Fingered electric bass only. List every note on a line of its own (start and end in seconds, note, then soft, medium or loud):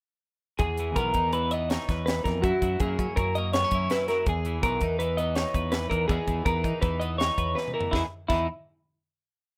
0.59 0.96 E2 medium
0.96 1.12 B1 medium
1.14 1.77 E2 medium
1.89 2.20 E2 medium
2.25 2.43 F2 medium
2.43 2.51 F#2 medium
2.62 2.77 F#2 medium
2.80 2.96 F#2 medium
2.99 3.06 F#3 medium
3.17 3.64 F#2 medium
3.72 3.87 F#2 medium
4.27 4.63 E2 medium
4.63 4.79 B1 medium
4.82 5.44 E2 medium
5.55 5.86 E2 medium
5.91 6.07 E2 medium
6.09 6.17 E2 loud
6.27 6.43 E2 medium
6.46 6.62 E2 medium
6.64 6.72 E3 medium
6.82 7.30 E2 medium
7.38 7.53 E2 medium
7.93 8.03 E2 medium
8.29 8.47 E2 medium